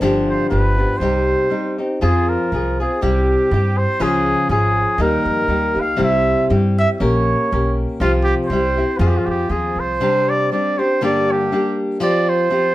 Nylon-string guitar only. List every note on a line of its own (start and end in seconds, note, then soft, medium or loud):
0.01 0.50 G2 medium
0.01 0.51 D3 medium
0.01 0.49 F3 medium
0.01 0.50 C4 medium
0.01 0.50 D4 medium
0.01 0.50 G4 loud
0.50 0.77 F3 medium
0.50 0.77 B3 medium
0.50 0.77 D4 soft
0.50 0.76 G4 medium
0.77 1.01 F3 soft
0.77 1.01 B3 soft
0.77 1.01 D4 soft
0.77 1.00 G4 soft
1.01 1.51 C3 medium
1.01 1.48 G3 medium
1.01 1.50 C4 medium
1.01 1.50 D#4 medium
1.01 1.50 G4 medium
1.49 1.77 G3 soft
1.49 1.78 C4 soft
1.49 1.78 D#4 medium
1.49 1.77 G4 medium
1.78 2.00 C4 soft
1.78 2.02 D#4 soft
1.78 2.02 G4 soft
2.01 2.51 F3 medium
2.01 2.52 C4 medium
2.01 2.52 F4 medium
2.01 2.52 G#4 medium
2.53 2.79 F3 soft
2.53 2.79 C4 medium
2.53 2.79 F4 medium
2.53 2.79 G#4 medium
2.80 3.01 C4 soft
2.80 3.02 F4 soft
2.80 3.02 G#4 soft
3.01 3.51 C3 medium
3.01 3.50 G3 medium
3.01 3.51 C4 medium
3.01 3.51 E4 medium
3.01 3.51 G4 medium
3.52 4.00 G3 medium
3.52 4.00 C4 soft
3.52 4.00 E4 soft
3.52 4.01 G4 medium
4.00 4.49 C#3 medium
4.00 4.49 F3 medium
4.00 4.49 C#4 medium
4.00 4.49 F4 medium
4.00 4.50 G#4 medium
4.50 4.99 F3 medium
4.50 4.99 C#4 medium
4.50 4.99 F4 medium
4.50 4.99 G#4 medium
4.98 5.49 D#3 medium
4.98 5.48 G3 medium
4.98 5.47 A#3 medium
4.98 5.49 D#4 medium
4.98 5.49 G4 medium
5.48 5.76 G3 soft
5.48 5.75 A#3 medium
5.48 5.74 D#4 medium
5.48 5.73 G4 medium
5.75 5.97 A#3 soft
5.75 5.97 D#4 soft
5.75 5.97 G4 soft
5.96 6.50 C3 medium
5.96 6.49 G3 medium
5.96 6.49 C4 medium
5.96 6.49 E4 medium
5.96 6.51 G4 medium
6.50 7.00 G3 medium
6.50 7.00 C4 medium
6.50 7.01 E4 soft
6.50 7.01 G4 medium
7.00 7.51 A#3 medium
7.00 7.51 C#4 medium
7.00 7.52 G4 medium
7.00 7.52 A#4 medium
7.52 8.01 A#3 soft
7.52 8.01 C#4 medium
7.52 8.00 G4 medium
7.52 8.01 A#4 medium
8.01 8.50 C3 medium
8.01 8.50 F3 medium
8.01 8.52 C4 medium
8.01 8.50 F4 medium
8.01 8.50 G4 medium
8.51 8.77 G3 medium
8.51 8.77 C4 medium
8.51 8.77 E4 medium
8.51 8.76 G4 medium
8.77 9.00 C4 soft
8.77 9.00 E4 soft
8.77 9.00 G4 soft
9.00 9.48 F3 medium
9.00 9.49 C4 medium
9.00 9.49 F4 medium
9.00 9.50 G#4 medium
9.49 10.00 F3 medium
9.49 10.00 C4 medium
9.49 10.01 F4 medium
9.49 10.01 G#4 medium
10.00 10.51 C3 medium
10.00 10.51 G3 medium
10.00 10.51 C4 medium
10.00 10.51 D4 medium
10.00 10.53 G4 medium
10.52 10.78 G3 medium
10.52 10.79 C4 medium
10.52 10.78 D4 medium
10.52 10.78 G4 medium
10.79 11.02 C4 soft
10.79 11.01 D4 soft
10.79 11.01 G4 soft
11.01 11.51 G2 medium
11.01 11.52 D3 medium
11.01 11.51 G3 medium
11.01 11.51 A#3 medium
11.01 11.51 D4 medium
11.01 11.53 G4 loud
11.52 12.00 G3 medium
11.52 12.00 A#3 medium
11.52 12.00 D4 medium
11.52 12.01 G4 medium
12.00 12.49 F3 medium
12.00 12.49 C4 medium
12.00 12.50 F4 medium
12.00 12.50 G4 medium
12.50 12.75 F3 medium
12.50 12.75 C4 medium
12.50 12.75 F4 medium
12.50 12.75 G4 medium